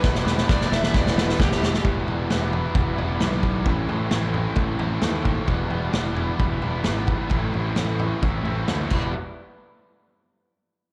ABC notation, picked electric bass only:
X:1
M:4/4
L:1/8
Q:1/4=131
K:Em
V:1 name="Picked electric bass" clef=bass
E,,, E,,, E,,, E,,, E,,, E,,, E,,, E,,, | E,,, E,,, E,,,2 E,,, E,,, B,,,2 | A,,, A,,, A,,,2 A,,, A,,, ^D,,2 | E,,, E,,, E,,,2 E,,, E,,, ^G,,,2 |
A,,, A,,, A,,,2 A,,, A,,, D,, E,,, | z8 |]